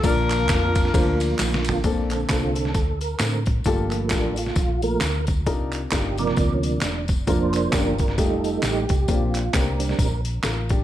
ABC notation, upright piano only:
X:1
M:4/4
L:1/16
Q:"Swing" 1/4=133
K:Bb
V:1 name="Upright piano"
[B,DFBd]4- [B,DFBd] z3 [B,DFBc]4- [B,DFBc] z3 | [B,CDA]2 z2 [B,CDA]4- [B,CDA] z6 z | [B,FGA]2 z2 [B,FGA]4- [B,FGA] z6 z | [DEFB]2 z2 [DEFB]4- [DEFB] z6 z |
[B,DFB]2 z2 [B,_D=DFG]4 [A,EFG]6 z2 | [B,CDG]2 z2 [B,CDG]4- [B,CDG] z3 [FB]2 [DG]2 |]
V:2 name="Upright piano" clef=bass
B,,6 z8 z2 | B,,6 z8 z2 | G,,6 z8 z2 | C,6 z8 z2 |
z16 | B,,6 z8 z2 |]